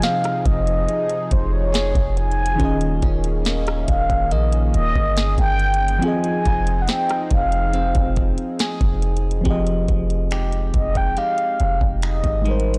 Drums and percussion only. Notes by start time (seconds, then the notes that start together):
0.02 snare, closed hi-hat
0.24 cross-stick, closed hi-hat
0.46 kick, closed hi-hat
0.67 closed hi-hat
0.89 closed hi-hat
1.09 closed hi-hat
1.31 kick, closed hi-hat
1.74 snare, closed hi-hat
1.95 kick, closed hi-hat
2.17 closed hi-hat
2.31 closed hi-hat
2.46 closed hi-hat
2.60 kick, closed hi-hat
2.81 closed hi-hat
3.02 kick, closed hi-hat
3.24 closed hi-hat
3.45 snare, closed hi-hat
3.67 cross-stick, closed hi-hat
3.88 kick, closed hi-hat
4.10 kick, closed hi-hat
4.31 closed hi-hat
4.52 closed hi-hat
4.74 closed hi-hat
4.96 kick
5.17 snare, closed hi-hat
5.38 kick, closed hi-hat
5.59 closed hi-hat
5.74 closed hi-hat
5.88 closed hi-hat
6.02 closed hi-hat
6.24 closed hi-hat
6.45 kick, closed hi-hat
6.67 closed hi-hat
6.88 snare, closed hi-hat
7.09 cross-stick, closed hi-hat
7.31 kick, closed hi-hat
7.52 closed hi-hat
7.73 closed hi-hat
7.95 kick, closed hi-hat
8.16 kick, closed hi-hat
8.38 closed hi-hat
8.59 snare, closed hi-hat
8.81 kick, closed hi-hat
9.02 closed hi-hat
9.17 closed hi-hat
9.31 closed hi-hat
9.45 kick, closed hi-hat
9.67 closed hi-hat
9.88 kick, closed hi-hat
10.10 closed hi-hat
10.31 finger snap, closed hi-hat
10.52 closed hi-hat
10.74 kick, closed hi-hat
10.95 kick, closed hi-hat
11.17 closed hi-hat
11.38 closed hi-hat
11.60 closed hi-hat
11.81 kick
12.02 finger snap, closed hi-hat
12.24 kick, closed hi-hat
12.45 closed hi-hat
12.60 closed hi-hat
12.74 closed hi-hat